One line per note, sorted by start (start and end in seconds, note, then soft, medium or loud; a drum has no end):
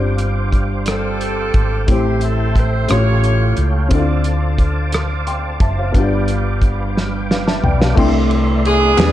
0.00 1.50 G1 medium
0.00 0.83 G2 medium
0.00 1.83 G3 medium
0.00 1.84 C4 medium
0.00 1.85 D4 medium
0.00 1.85 F4 medium
0.00 1.86 C5 medium
0.00 1.84 F5 soft
0.00 3.87 G5 soft
0.00 1.85 D6 medium
0.18 closed hi-hat soft
0.52 kick medium
0.52 closed hi-hat soft
0.86 1.85 C4 medium
0.86 1.86 F4 medium
0.86 1.85 A4 medium
0.86 cross-stick medium
0.86 closed hi-hat medium
1.21 closed hi-hat soft
1.54 1.86 G#1 medium
1.54 kick medium
1.54 closed hi-hat soft
1.87 2.86 A1 medium
1.87 2.86 A2 medium
1.87 2.86 A3 medium
1.87 2.90 C4 soft
1.87 2.90 E4 medium
1.87 2.90 G4 soft
1.87 2.23 G4 medium
1.87 3.89 A4 soft
1.87 2.89 E5 soft
1.87 2.89 C6 medium
1.87 kick medium
1.87 closed hi-hat medium
1.91 2.87 C4 medium
1.91 2.87 E4 medium
1.91 2.91 C5 medium
2.21 2.57 A4 medium
2.21 closed hi-hat soft
2.56 2.91 C5 medium
2.56 kick medium
2.56 closed hi-hat soft
2.88 3.54 A1 medium
2.88 3.88 A2 medium
2.88 3.90 A3 medium
2.88 3.91 C#4 medium
2.88 3.92 F4 soft
2.88 3.88 F4 medium
2.88 3.88 G4 medium
2.88 3.92 G4 soft
2.88 3.91 C#5 medium
2.88 3.67 C#5 medium
2.88 7.94 F5 soft
2.88 3.92 C6 medium
2.88 cross-stick loud
2.88 closed hi-hat medium
3.24 closed hi-hat soft
3.57 3.89 C#2 medium
3.57 closed hi-hat soft
3.89 5.57 D2 medium
3.89 4.89 D3 medium
3.89 5.89 C4 medium
3.89 5.90 D4 medium
3.89 3.98 E4 soft
3.89 5.93 A5 soft
3.89 5.93 D6 medium
3.89 kick medium
3.89 closed hi-hat medium
3.93 5.92 A4 medium
3.93 5.93 C5 medium
3.93 4.93 D5 medium
3.98 5.94 F4 medium
4.24 closed hi-hat soft
4.58 kick medium
4.58 closed hi-hat soft
4.92 cross-stick medium
4.92 closed hi-hat medium
5.27 5.59 G5 soft
5.27 5.59 C6 medium
5.27 closed hi-hat soft
5.60 5.92 F#1 medium
5.60 5.77 E5 medium
5.60 5.77 A5 medium
5.60 kick medium
5.60 closed hi-hat soft
5.78 6.11 C5 soft
5.78 6.10 F5 soft
5.92 7.60 G1 medium
5.92 6.93 G2 medium
5.92 7.92 B3 medium
5.92 7.93 D4 medium
5.92 7.96 B4 medium
5.92 7.96 G5 medium
5.92 7.95 D6 medium
5.92 kick medium
5.92 closed hi-hat medium
5.97 7.94 F4 medium
5.97 7.95 G4 medium
5.97 7.30 D5 medium
6.28 closed hi-hat soft
6.62 kick medium
6.62 closed hi-hat soft
6.97 snare soft
7.31 7.46 B4 soft
7.31 7.46 F5 soft
7.31 snare medium
7.47 7.63 E5 soft
7.47 7.63 A5 medium
7.47 snare medium
7.64 7.95 B1 medium
7.64 7.80 D5 soft
7.64 7.80 G5 medium
7.64 floor tom medium
7.80 8.13 B4 soft
7.80 8.12 F5 soft
7.80 snare medium
7.95 8.95 C2 loud
7.95 8.94 C3 medium
7.95 8.97 A3 medium
7.95 8.98 A3 medium
7.95 8.97 D4 medium
7.95 8.97 E4 medium
7.95 9.12 D5 medium
7.95 9.12 E5 medium
7.95 8.99 G5 medium
7.95 8.98 C6 medium
7.95 8.99 C6 medium
7.95 kick loud
7.95 crash loud
8.31 ride soft
8.65 9.12 B3 medium
8.65 9.12 D4 medium
8.65 9.12 G#4 loud
8.65 ride medium
8.97 9.12 E2 medium
8.97 9.12 E3 medium
8.97 9.12 B3 medium
8.97 9.12 D4 medium
8.97 9.12 E4 medium
8.97 9.06 G4 soft
8.97 9.12 G#4 medium
8.97 9.12 D5 medium
8.97 9.12 B5 medium
8.97 snare loud
8.97 clap medium
8.97 ride medium
9.06 9.12 G#4 medium